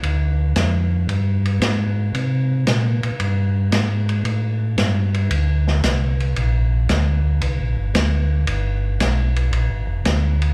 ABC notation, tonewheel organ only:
X:1
M:4/4
L:1/8
Q:"Swing" 1/4=114
K:Gphr
V:1 name="Tonewheel organ" clef=bass
D,,2 F,,2 G,,2 A,,2 | C,2 B,, B,, G,,2 A,,2 | =A,,2 G,,2 D,,2 C,,2 | B,,,2 D,,2 (3C,, B,,, G,,, D,,2 |
G,,,2 =B,,,2 (3_B,,, A,,, F,,, D,,2 |]